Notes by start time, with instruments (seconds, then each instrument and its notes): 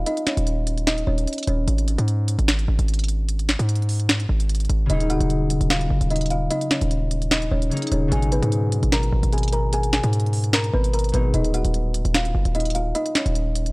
0.06 kalimba D#4 D#5, closed hi-hat
0.17 closed hi-hat
0.26 kalimba C#4 C#5, snare, closed hi-hat
0.37 808-style bass D#1, closed hi-hat
0.47 closed hi-hat
0.67 closed hi-hat
0.78 closed hi-hat
0.87 kalimba D#4 D#5, snare, closed hi-hat
0.98 closed hi-hat
1.07 808-style bass D#1, kalimba C#4 C#5
1.18 closed hi-hat
1.27 closed hi-hat
1.33 closed hi-hat
1.38 closed hi-hat
1.43 closed hi-hat
1.47 808-style bass D#1, kalimba C#4 C#5, closed hi-hat
1.68 808-style bass G#1, closed hi-hat
1.78 closed hi-hat
1.88 closed hi-hat
1.98 808-style bass G#2, closed hi-hat
2.08 closed hi-hat
2.28 closed hi-hat
2.39 808-style bass G#1, closed hi-hat
2.48 snare, closed hi-hat
2.59 closed hi-hat
2.68 808-style bass G#1
2.79 808-style bass G#1, closed hi-hat
2.88 closed hi-hat
2.94 closed hi-hat
2.99 closed hi-hat
3.04 closed hi-hat
3.08 closed hi-hat
3.29 closed hi-hat
3.39 closed hi-hat
3.49 snare, closed hi-hat
3.59 808-style bass G#2, closed hi-hat
3.69 closed hi-hat
3.76 closed hi-hat
3.82 closed hi-hat
3.89 open hi-hat
4.00 closed hi-hat
4.09 snare, closed hi-hat
4.20 closed hi-hat
4.29 808-style bass G#1
4.40 closed hi-hat
4.49 closed hi-hat
4.55 closed hi-hat
4.60 closed hi-hat
4.65 closed hi-hat
4.69 808-style bass G#1, closed hi-hat
4.86 808-style bass D#1, harp C#3 F#3, kalimba D#5, closed hi-hat
4.91 harp A#3 D#4, kalimba D#4
5.00 closed hi-hat
5.10 kalimba F#4 F#5, closed hi-hat
5.20 808-style bass D#1, closed hi-hat
5.30 closed hi-hat
5.50 closed hi-hat
5.61 808-style bass D#1, closed hi-hat
5.70 kalimba F4 F5, snare, closed hi-hat
5.81 closed hi-hat
5.90 808-style bass F#1
6.01 808-style bass D#1, closed hi-hat
6.10 kalimba D#4 D#5, closed hi-hat
6.16 closed hi-hat
6.21 closed hi-hat
6.26 closed hi-hat
6.30 kalimba F4 F5, closed hi-hat
6.51 kalimba D#4 D#5, closed hi-hat
6.61 closed hi-hat
6.71 kalimba C#4 C#5, snare, closed hi-hat
6.81 808-style bass D#1, closed hi-hat
6.91 closed hi-hat
7.11 closed hi-hat
7.22 closed hi-hat
7.31 kalimba D#4 D#5, snare, closed hi-hat
7.42 closed hi-hat
7.51 808-style bass D#1, kalimba C#4 C#5
7.62 closed hi-hat
7.70 harp C#3 F#3 A#3 D#4, closed hi-hat
7.77 closed hi-hat
7.82 closed hi-hat
7.87 closed hi-hat
7.92 808-style bass D#1, kalimba C#4 C#5, closed hi-hat
8.08 808-style bass G#1, harp B2 F#3, kalimba G#4, closed hi-hat
8.13 harp G#3 D#4, kalimba G#5
8.22 closed hi-hat
8.32 kalimba B3 B4, closed hi-hat
8.42 808-style bass G#2, closed hi-hat
8.52 closed hi-hat
8.72 closed hi-hat
8.83 808-style bass G#1, closed hi-hat
8.92 kalimba A#4 A#5, snare, closed hi-hat
9.03 closed hi-hat
9.12 808-style bass G#1
9.23 808-style bass G#1, closed hi-hat
9.33 kalimba G#4 G#5, closed hi-hat
9.38 closed hi-hat
9.43 closed hi-hat
9.48 closed hi-hat
9.53 kalimba A#4 A#5, closed hi-hat
9.73 kalimba G#4 G#5, closed hi-hat
9.83 closed hi-hat
9.93 kalimba G#4 G#5, snare, closed hi-hat
10.03 808-style bass G#2, closed hi-hat
10.13 closed hi-hat
10.20 closed hi-hat
10.26 closed hi-hat
10.33 open hi-hat
10.44 closed hi-hat
10.53 kalimba A#4 A#5, snare, closed hi-hat
10.64 closed hi-hat
10.73 808-style bass G#1, kalimba B3 B4
10.84 closed hi-hat
10.93 kalimba A#4 A#5, closed hi-hat
10.99 closed hi-hat
11.04 closed hi-hat
11.09 harp B2, closed hi-hat
11.13 808-style bass G#1, harp F#3 G#3 D#4, kalimba B3 B4, closed hi-hat
11.34 808-style bass D#1, kalimba D#4 D#5, closed hi-hat
11.44 closed hi-hat
11.54 kalimba F#4 F#5, closed hi-hat
11.65 808-style bass D#1, closed hi-hat
11.74 closed hi-hat
11.94 closed hi-hat
12.05 808-style bass D#1, closed hi-hat
12.14 kalimba F4 F5, snare, closed hi-hat
12.25 closed hi-hat
12.35 808-style bass F#1
12.45 808-style bass D#1, closed hi-hat
12.55 kalimba D#4 D#5, closed hi-hat
12.60 closed hi-hat
12.65 closed hi-hat
12.70 closed hi-hat
12.75 kalimba F4 F5, closed hi-hat
12.95 kalimba D#4 D#5, closed hi-hat
13.06 closed hi-hat
13.15 kalimba C#4 C#5, snare, closed hi-hat
13.26 808-style bass D#1, closed hi-hat
13.35 closed hi-hat
13.55 closed hi-hat
13.66 closed hi-hat